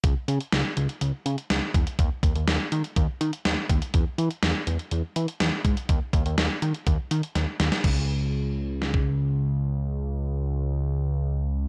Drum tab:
CC |----------------|----------------|----------------|----------------|
HH |x-xxx-xxx-xxx-xx|x-xxx-xxx-xxx-xx|x-xxx-xxx-xxx-xx|x-xxx-xxx-xxx-xx|
SD |----o-------o---|----o-------o---|----o-------o---|----o-------o-oo|
BD |o-------------o-|o-o-----o-----o-|o-------------o-|o-o-----o-------|

CC |x---------------|----------------|
HH |----------------|----------------|
SD |--------o-------|----------------|
BD |o--------o------|----------------|